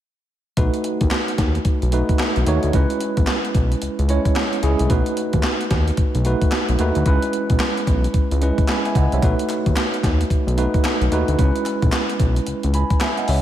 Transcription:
0.57 B1 A3 D#4 F#4 B4, kick, closed hi-hat
0.74 closed hi-hat
0.84 closed hi-hat
1.01 D#2, kick, closed hi-hat
1.11 snare, clap, closed hi-hat
1.28 closed hi-hat
1.38 D#2, kick, snare, closed hi-hat
1.55 closed hi-hat
1.65 B1, kick, closed hi-hat
1.82 B1, closed hi-hat
1.92 A3 D#4 F#4 B4, closed hi-hat
2.09 kick, closed hi-hat
2.19 snare, clap, closed hi-hat
2.36 B1, closed hi-hat
2.46 D#2 A3 D#4 F#4 C#5, closed hi-hat
2.63 D2, closed hi-hat
2.73 C#2 G#3 C#4 E4 B4, kick, closed hi-hat
2.90 closed hi-hat
3.01 closed hi-hat
3.17 B1, kick, closed hi-hat
3.27 snare, clap, closed hi-hat
3.45 closed hi-hat
3.55 B1, kick, closed hi-hat
3.72 closed hi-hat
3.82 C#2, closed hi-hat
3.99 C#2, closed hi-hat
4.09 G#3 C#4 E4 C#5, closed hi-hat
4.25 kick, closed hi-hat
4.36 snare, clap, closed hi-hat
4.53 closed hi-hat
4.63 C#2 G#3 C#4 E4 G#4, closed hi-hat
4.79 C2, closed hi-hat
4.89 B1 A3 D#4 F#4 B4, kick, closed hi-hat
5.06 closed hi-hat
5.17 closed hi-hat
5.33 D#2, kick, closed hi-hat
5.43 snare, clap, closed hi-hat
5.61 closed hi-hat
5.71 D#2, kick, snare, closed hi-hat
5.88 closed hi-hat
5.97 B1, kick, closed hi-hat
6.15 B1, closed hi-hat
6.25 A3 D#4 F#4 B4, closed hi-hat
6.42 kick, closed hi-hat
6.52 snare, clap, closed hi-hat
6.69 B1, closed hi-hat
6.79 D#2 A3 D#4 F#4 B4, closed hi-hat
6.95 D2, closed hi-hat
7.06 C#2 G#3 C#4 E4 B4, kick, closed hi-hat
7.22 closed hi-hat
7.33 closed hi-hat
7.50 B1, kick, closed hi-hat
7.60 snare, clap, closed hi-hat
7.77 closed hi-hat
7.87 B1, kick, closed hi-hat
8.04 closed hi-hat
8.14 C#2, kick, closed hi-hat
8.31 C#2, closed hi-hat
8.42 G#3 C#4 E4 B4, closed hi-hat
8.58 kick, closed hi-hat
8.68 G#5 B5, snare, clap, closed hi-hat
8.85 E5 G#5, closed hi-hat
8.95 C#2 D#5 F#5, kick, closed hi-hat
9.12 C2 C#5 E5, closed hi-hat
9.22 B1 A3 D#4 F#4 B4, kick, closed hi-hat
9.39 closed hi-hat
9.49 clap, closed hi-hat
9.66 D#2, kick, closed hi-hat
9.76 snare, clap, closed hi-hat
9.94 closed hi-hat
10.03 D#2, kick, snare, closed hi-hat
10.21 closed hi-hat
10.30 B1, kick, closed hi-hat
10.47 B1, closed hi-hat
10.57 A3 D#4 F#4 B4, closed hi-hat
10.74 kick, closed hi-hat
10.84 snare, clap, closed hi-hat
11.01 B1, closed hi-hat
11.12 D#2 A3 D#4 F#4 B4, closed hi-hat
11.28 D2, closed hi-hat
11.38 C#2 G#3 C#4 E4 B4, kick, closed hi-hat
11.56 closed hi-hat
11.65 clap, closed hi-hat
11.82 B1, kick, closed hi-hat
11.92 snare, clap, closed hi-hat
12.10 closed hi-hat
12.20 B1, kick, closed hi-hat
12.36 closed hi-hat
12.47 C#2, closed hi-hat
12.63 C#2, closed hi-hat
12.74 G#5 B5, closed hi-hat
12.90 kick, closed hi-hat
13.01 E5 G#5, snare, clap, closed hi-hat
13.18 D#5 F#5, closed hi-hat
13.28 C#2 C#5 E5, open hi-hat

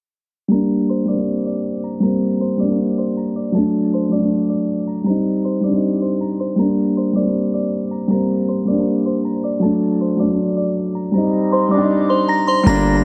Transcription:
0.48 G3 A#3 A#5
0.52 D4 A#6
0.89 C5 C6
1.05 G3 A#3 D5 D6
1.11 G3 C4
1.18 A#3 C4
1.46 D5 D6
1.84 A#5 A#6
2.00 G3 A#3 A#5 A#6
2.06 C4
2.41 C5 C6
2.57 G3 A#3 D5 D6
2.63 G3 D4
2.69 A#3 D4
2.98 C5 C6
3.17 A#5 A#6
3.36 D5 D6
3.52 F#3 A3 A5 A6
3.58 D4
3.94 C5 C6
4.09 F#3 A3 D5 D6
4.15 F#3 D4
4.22 A3 D4
4.49 D5 D6
4.87 A#5 A#6
5.04 G3 C4 A#5 A#6
5.10 D#4
5.45 C5 C6
5.61 G3 C4 D5 D6
5.67 G3 D4
5.73 C4 D#4
6.02 C5 C6
6.21 A#5 A#6
6.40 C5 C6
6.56 G3 A#3 A#5
6.60 D4 A#6
6.97 C5 C6
7.13 G3 A#3 D5 D6
7.19 G3 C4
7.25 A#3 C4
7.54 D5 D6
7.91 A#5 A#6
8.08 G3 A#3 A#5 A#6
8.13 C4
8.49 C5 C6
8.65 G3 A#3 D5 D6
8.71 G3 D4
8.77 A#3 D4
9.06 C5 C6
9.25 A#5 A#6
9.44 D5 D6
9.59 F#3 A3 A5 A6
9.65 D4
10.01 C5 C6
10.17 F#3 A3 D5 D6
10.23 F#3 D4
10.29 A3 D4
10.57 D5 D6
10.95 A#5 A#6
11.12 G3 C4 A#5 A#6
11.18 D#4
11.52 C5 C6
11.68 G3 C4 D5 D6
11.74 G3 D4
11.81 C4 D#4
12.09 C5 C6
12.28 A#5 A#6
12.47 C5 C6
12.63 G1 G3 A#3 A#5
12.68 D4 A#6

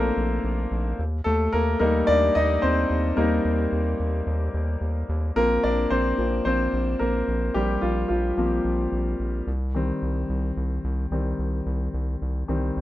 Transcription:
Already playing: A#1 F3 A3 A#3 C4 D4 F4 A4 A#4 C5 D5 F5
0.17 A#1
0.44 A#1
0.71 A#1
0.99 D#2
1.24 D#2 A3 A4
1.53 D#2 A#3 A#4
1.79 D#2 G3 A#3 D#4 A#4
2.07 D#2 D4 D5
2.35 D#2 D#4 D#5
2.62 D#2 C4 C5
2.90 D#2
3.16 D#2 G3 A#3 D#4 A#4
3.45 D#2
3.72 D#2
4.00 D#2
4.27 D#2
4.54 D#2
4.81 D#2
5.09 D#2
5.36 A#1 F3 A#3 C4 A#4
5.64 A#1 D4 D5
5.90 A#1 C4 C5
6.18 A#1 F3 A#3 C4
6.45 A#1 C4 C5
6.73 A#1
6.99 A#1 A#3 A#4
7.28 A#1
7.54 A#1 G3 G4
7.81 A#1 F3 F4
8.08 A#1 F3 F4
8.37 A#1 F3 A#3 C4
8.65 A#1
8.92 A#1
9.19 A#1
9.47 C2
9.75 D#3 G3 C4
10.02 C2
10.29 C2
10.57 C2
10.84 C2
11.11 C2 D#3 G3 C4
11.39 C2
11.66 C2
11.94 C2
12.22 C2
12.48 C2 D#3 G3 C4
12.77 C2

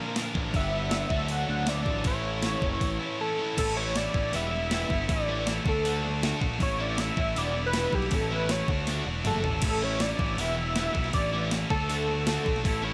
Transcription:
Already playing: A#2 D3 F3 A#3 D4 F4 A#4
0.00 A#2 F3 A#3 D4
0.16 A#2 F3 A#3 D4 F4 A#4, snare, open hi-hat
0.34 A1 A#2 D3 F3 A#3 D4, kick
0.53 G1 G2 D3 G3 D4 E5, kick, open hi-hat
0.57 B3 B4
0.91 snare, open hi-hat
1.09 D2 D3 F#3 A3 D4 F#4 A4, kick
1.28 F#5, open hi-hat
1.49 D2
1.67 D5, snare, open hi-hat
1.85 A1, kick
2.04 A1 A2 E3 A3 C#4 E4 A4 C#5, kick, open hi-hat
2.42 snare, open hi-hat
2.62 F#1, kick
2.81 A1, kick, open hi-hat
2.99 A2 E3 A3 C#4 E4 A4
3.18 A2 E3 A3 C#4 E4 A4
3.38 A2 E3 A3 C#4 E4
3.56 A1 A2 E3 A3 C#4 E4 A4, muted distorted electric guitar stroke, kick, open hi-hat, crash
3.76 E3 A3 C#4 E4 C#5
3.94 A2 E3 A3 C#4 E4 D5, muted distorted electric guitar stroke, snare, open hi-hat
4.14 A1 A3 C#4 E4, muted distorted electric guitar stroke, kick
4.31 E1 E2 B2 E3 G3 B3 E4, open hi-hat
4.36 E5
4.51 E2 B2 E3 G3 B3 E4, muted distorted electric guitar stroke
4.71 E3 G3 B3 E4, snare, open hi-hat
4.90 G1 E3 G3 B3 E4, muted distorted electric guitar stroke, kick
5.08 A1 A2 E3 A3 C#4 E4 D5, muted distorted electric guitar stroke, kick, open hi-hat
5.28 E3 A3 C#4 E4
5.45 A2 E3 A3 C#4 E4, muted distorted electric guitar stroke, snare, open hi-hat
5.65 D2 D3 A3 D4 F#4 A4, muted distorted electric guitar stroke, kick
5.83 D3 A3 D4 F#4, open hi-hat
6.02 D3 A3 D4 F#4, muted distorted electric guitar stroke
6.20 D3 A3 D4 F#4, snare, open hi-hat
6.40 A#1 A3 D4 F#4, muted distorted electric guitar stroke, kick
6.59 A1 A2 E3 A3 C#4 E4 C#5, muted distorted electric guitar stroke, kick, open hi-hat
6.78 E3 A3 C#4 E4 D5
6.97 A2 E3 A3 C#4 E4 E5, muted distorted electric guitar stroke, snare, open hi-hat
7.17 A1 A3 C#4 E4, muted distorted electric guitar stroke, kick
7.35 E1 E2 B2 E3 G3 B3 E4 D5, open hi-hat
7.54 E2 B2 E3 G3 B3 E4, muted distorted electric guitar stroke
7.66 B4
7.73 E3 G3 B3 E4, snare, open hi-hat
7.92 B1 E3 G3 B3 E4 G4, muted distorted electric guitar stroke, kick
8.02 snare
8.11 A1 A2 E3 A3 C#4 E4 A4, muted distorted electric guitar stroke, kick, open hi-hat
8.31 E3 A3 C#4 E4 B4
8.49 A2 E3 A3 C#4 E4 C#5, muted distorted electric guitar stroke, snare, open hi-hat
8.68 D2 A3 D4 F#4, muted distorted electric guitar stroke, kick
8.72 D3
8.87 D3 A3 D4, snare, open hi-hat
8.91 F#4
9.06 E1 A3 D4 F#4, muted distorted electric guitar stroke
9.10 D3
9.25 F#1 D3 A3 D4 A4, mid tom, open hi-hat
9.29 F#4
9.44 A1 A3 D4 F#4, muted distorted electric guitar stroke, floor tom
9.62 A1 A2 E3 A3 C#4 A4, muted distorted electric guitar stroke, kick, open hi-hat, crash
9.66 E4
9.82 E3 A3 C#4 E4 C#5
10.00 A2 E3 A3 C#4 E4 D5, muted distorted electric guitar stroke, snare, open hi-hat
10.18 A1 A3 C#4 E4, muted distorted electric guitar stroke, kick
10.37 E1 E2 B2 E3 G3 B3 E4 E5, open hi-hat
10.57 E2 B2 E3 G3 B3 E4, muted distorted electric guitar stroke
10.75 E3 G3 B3 E4, snare, open hi-hat
10.93 B1 E3 G3 B3 E4, muted distorted electric guitar stroke, kick
11.04 snare
11.12 A1 A2 E3 A3 C#4 E4 D5, muted distorted electric guitar stroke, kick, open hi-hat
11.31 E3 A3 C#4 E4
11.51 A2 E3 A3 C#4 E4, muted distorted electric guitar stroke, snare, open hi-hat
11.70 D2 D3 A3 D4 F#4 A4, muted distorted electric guitar stroke, kick
11.89 D3 A3 D4 F#4, open hi-hat
12.07 D3 A3 D4 F#4, muted distorted electric guitar stroke
12.27 D3 A3 D4 F#4 A4, snare, open hi-hat
12.45 B1 A3 D4 F#4, muted distorted electric guitar stroke, kick
12.56 snare
12.63 A1 A2 E3 A3 C#4 E4 A4, muted distorted electric guitar stroke, kick, open hi-hat
12.83 E3 A3 C#4 E4 C#5

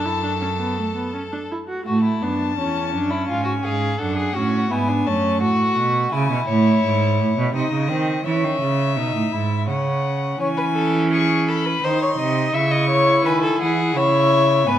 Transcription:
Already playing: F#2 A4 A5
0.05 E4
0.23 D4
0.41 C#4
0.60 B3
0.79 A3
0.95 B3
1.14 C#4
1.32 D4
1.51 E4
1.68 F#4
1.86 A2 A3 F#4 A5
2.03 E4
2.22 F#2 B3 D4
2.58 E2 C#4
2.94 F#2 D4
3.10 E4
3.28 G#2 F4 G#5
3.44 F#4
3.64 G#2 G#4 F5
3.99 F#2 D4 A4 F#5
4.17 G#4
4.35 A2 C#4 F#4
4.71 G#2 B3 E4 G#5
4.88 D4
5.06 F#2 A3 C#4 A5
5.41 A2 F#4 F#5
5.77 B2
6.12 C#3 E4 G#5
6.31 B2
6.48 A2 C#5
6.84 G#2
7.19 A2
7.37 B2
7.54 C3 D#4 D#5
7.72 C#3
7.89 D#3 C4
8.25 E3 C#4 E5
8.44 D#3
8.61 C#3
8.97 B2 D#4
9.15 A2
9.32 G#2 E4
9.68 C#3 C#4 F#5
10.40 E3 C#4 C#5 G#5
10.57 B4
10.75 A4
11.12 G#4 C#6
11.48 A4 B5
11.66 B4
11.83 D#3 D#4 C5 C6
12.02 C#5
12.18 C3 D#5
12.54 C#3 E4 E5 C#6
12.71 D#5
12.90 C#5
13.25 D#3 B4 G#5
13.43 A4
13.61 E3 G#4 F#5
13.96 C#3 E4 C#5 E5
14.67 G#2 B3 B4 G#5

